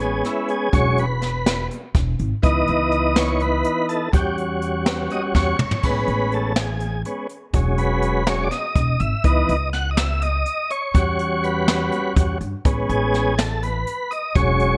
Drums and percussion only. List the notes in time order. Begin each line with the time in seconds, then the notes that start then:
0.00 closed hi-hat
0.24 snare, closed hi-hat
0.48 closed hi-hat
0.73 kick, closed hi-hat
0.98 closed hi-hat
1.22 snare, closed hi-hat
1.46 snare, closed hi-hat
1.71 closed hi-hat
1.95 kick, snare, closed hi-hat
2.19 closed hi-hat
2.43 kick, closed hi-hat
2.68 closed hi-hat
2.92 closed hi-hat
3.16 snare, closed hi-hat
3.40 closed hi-hat
3.64 closed hi-hat
3.89 closed hi-hat
4.13 kick, closed hi-hat
4.38 closed hi-hat
4.62 closed hi-hat
4.86 snare, closed hi-hat
5.10 closed hi-hat
5.35 kick, snare
5.59 mid tom
5.71 floor tom
5.83 kick, closed hi-hat, crash
6.08 closed hi-hat
6.32 closed hi-hat
6.56 snare, closed hi-hat
6.80 closed hi-hat
7.05 closed hi-hat
7.29 closed hi-hat
7.54 kick, closed hi-hat
7.78 closed hi-hat
8.02 closed hi-hat
8.27 snare, closed hi-hat
8.51 snare, closed hi-hat
8.76 kick, closed hi-hat
9.00 closed hi-hat
9.24 kick, closed hi-hat
9.49 closed hi-hat
9.73 snare, closed hi-hat
9.97 snare, closed hi-hat
10.22 closed hi-hat
10.46 closed hi-hat
10.70 closed hi-hat
10.95 kick, closed hi-hat
11.19 closed hi-hat
11.44 closed hi-hat
11.68 snare, closed hi-hat
11.92 closed hi-hat
12.16 kick, closed hi-hat
12.41 closed hi-hat
12.65 kick, closed hi-hat
12.90 closed hi-hat
13.14 snare, closed hi-hat
13.39 snare, closed hi-hat
13.63 closed hi-hat
13.87 closed hi-hat
14.11 closed hi-hat
14.35 kick, closed hi-hat
14.60 closed hi-hat